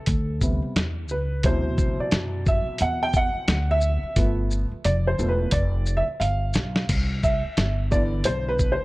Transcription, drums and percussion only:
0.06 kick, closed hi-hat
0.41 kick, shaker
0.76 snare, closed hi-hat
1.09 shaker
1.43 kick, closed hi-hat
1.78 kick, shaker
2.11 snare, closed hi-hat
2.46 kick, shaker
2.78 closed hi-hat
3.14 kick, shaker
3.48 snare, closed hi-hat
3.81 shaker
4.16 kick, closed hi-hat
4.51 shaker
4.85 closed hi-hat
5.19 shaker
5.51 kick, closed hi-hat
5.86 shaker
6.21 closed hi-hat
6.54 snare, closed hi-hat, shaker
6.76 snare
6.89 kick, closed hi-hat, crash
7.23 kick, shaker
7.57 snare, closed hi-hat
7.92 kick, shaker
8.24 closed hi-hat
8.59 kick, shaker

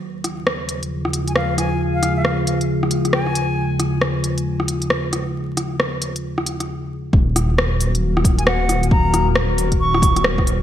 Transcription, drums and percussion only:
0.24 cross-stick, closed hi-hat
0.47 cross-stick
0.69 closed hi-hat
0.83 closed hi-hat
1.05 cross-stick
1.13 closed hi-hat
1.28 closed hi-hat
1.36 cross-stick
1.58 cross-stick, closed hi-hat
2.03 cross-stick, closed hi-hat
2.25 cross-stick
2.47 closed hi-hat
2.61 closed hi-hat
2.83 cross-stick
2.91 closed hi-hat
3.05 cross-stick, closed hi-hat
3.13 cross-stick
3.27 cross-stick
3.35 closed hi-hat
3.80 cross-stick, closed hi-hat
4.01 cross-stick
4.24 closed hi-hat
4.38 closed hi-hat
4.60 cross-stick
4.68 closed hi-hat
4.82 closed hi-hat
4.90 cross-stick
5.13 cross-stick, closed hi-hat
5.57 cross-stick, closed hi-hat
5.80 cross-stick
6.02 closed hi-hat
6.16 closed hi-hat
6.38 cross-stick
6.46 closed hi-hat
6.60 cross-stick, closed hi-hat
7.13 kick
7.36 cross-stick, open hi-hat
7.58 cross-stick
7.80 open hi-hat
7.95 closed hi-hat
8.17 cross-stick
8.24 kick, open hi-hat
8.39 closed hi-hat
8.47 cross-stick
8.69 cross-stick, open hi-hat
8.83 open hi-hat
8.91 kick
9.14 cross-stick, open hi-hat
9.35 cross-stick
9.58 open hi-hat
9.72 kick, closed hi-hat
9.94 cross-stick
10.02 kick, open hi-hat
10.16 cross-stick, closed hi-hat
10.24 cross-stick
10.38 kick, cross-stick
10.47 open hi-hat

